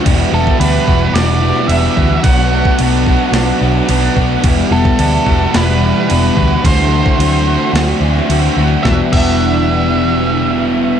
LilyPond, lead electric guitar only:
\new Staff \with { instrumentName = "Lead electric guitar" } { \time 4/4 \key e \minor \tempo 4 = 109 r8 a'8 b'4 d''4 e''4 | fis''4 r2. | r8 a'4. b'2 | c''2 r2 |
e''8 e''2.~ e''8 | }